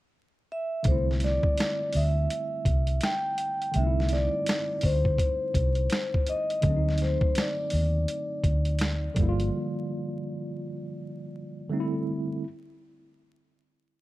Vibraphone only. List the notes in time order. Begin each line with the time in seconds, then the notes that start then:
0.52 E5
0.87 C5
1.24 D5
1.96 E5
3.04 G5
3.76 E5
4.12 D5
4.85 C5
6.29 D#5
7.01 C5
7.38 D5